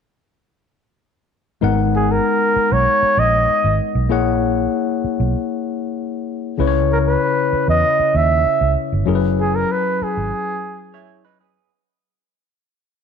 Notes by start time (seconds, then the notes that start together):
1.61 G#1 G#3 B3 D#4 A#4 F#5
1.96 G#4
2.11 A#4
2.56 muted fingered electric bass stroke
2.72 B1 C#5
3.02 muted fingered electric bass stroke
3.17 A#1 D#5
3.49 muted fingered electric bass stroke
3.64 G#1
3.95 B1
4.09 A#1 A#3 E4 G#4 C#5 F#5
5.04 muted fingered electric bass stroke
5.20 B1
6.58 C#2 C#3 C#4 E4 B4 C#5
6.67 C#5
6.92 A#4
7.08 B4
7.53 muted fingered electric bass stroke
7.68 E2 D#5
7.99 muted fingered electric bass stroke
8.15 D#2 E5
8.46 muted fingered electric bass stroke
8.61 C#2
8.92 G1
9.06 F#1 F#3 C#4 E4 G#4 A#4
9.15 B4
9.40 G#4
9.55 A#4
9.72 B4
10.02 G#4, muted fingered electric bass stroke
10.17 G#1
10.94 E4 C#5
11.25 D#4 B4
11.41 B3 G#4